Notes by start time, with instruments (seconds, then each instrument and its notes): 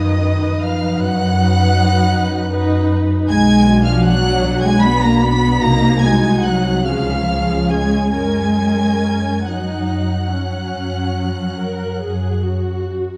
Already playing: double bass section F#2, cello section D#3, viola section D#4 B4, violin section D#5 D#6
0.21 viola section D#4 B4
0.60 cello section F3, violin section F5 F6
0.97 double bass section F#2, cello section F#3, violin section F#5 F#6
1.36 viola section D#4 B4
2.12 double bass section F#2
2.51 viola section D#4 B4
3.28 double bass section B1, cello section G#3, violin section G#5 G#6
3.67 viola section D4 F#4
3.86 cello section F3, violin section F5 F6
4.04 cello section F#3, violin section F#5 F#6
4.42 double bass section B1
4.62 cello section G#3, violin section G#5 G#6
4.81 cello section B3, viola section D4 F#4, violin section B5 B6
5.02 cello section A#3, violin section A#5 A#6
5.21 cello section B3, violin section B5 B6
5.61 double bass section C2, cello section A#3, viola section D#4 F#4, violin section A#5 A#6
6.02 cello section G#3, viola section D#4 F#4, violin section G#5 G#6
6.44 cello section F#3, violin section F#5 F#6
6.85 double bass section C#2, cello section F3, viola section C#4 G#4, violin section F5 F6
7.27 viola section C#4 G#4
7.68 cello section G#3, violin section G#5 G#6
8.11 double bass section F#2, cello section G#3, viola section C#4 A#4, violin section G#5 G#6
8.56 viola section C#4 A#4
9.45 double bass section F#2, cello section F#3, viola section D#4, violin section F#5 F#6
10.30 viola section C#4
10.74 double bass section F#2
11.59 viola section A#4
12.01 double bass section F#2, viola section G#4
12.43 viola section F#4